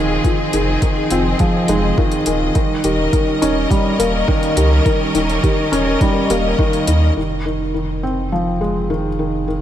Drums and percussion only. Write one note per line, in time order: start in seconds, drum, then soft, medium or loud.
0.24 kick medium
0.24 closed hi-hat soft
0.53 closed hi-hat medium
0.82 kick medium
0.82 closed hi-hat soft
1.11 closed hi-hat medium
1.39 kick loud
1.39 closed hi-hat soft
1.68 closed hi-hat medium
1.98 kick loud
2.12 closed hi-hat soft
2.26 closed hi-hat medium
2.55 kick medium
2.55 closed hi-hat soft
2.84 closed hi-hat medium
3.13 kick medium
3.13 closed hi-hat soft
3.42 closed hi-hat medium
3.71 kick loud
3.71 closed hi-hat soft
4.00 closed hi-hat medium
4.28 kick medium
4.43 closed hi-hat soft
4.57 closed hi-hat medium
4.86 kick medium
4.86 closed hi-hat soft
5.15 closed hi-hat medium
5.30 closed hi-hat soft
5.43 kick medium
5.43 closed hi-hat soft
5.73 closed hi-hat medium
6.01 kick loud
6.01 closed hi-hat soft
6.30 closed hi-hat medium
6.59 kick medium
6.73 closed hi-hat soft
6.87 closed hi-hat medium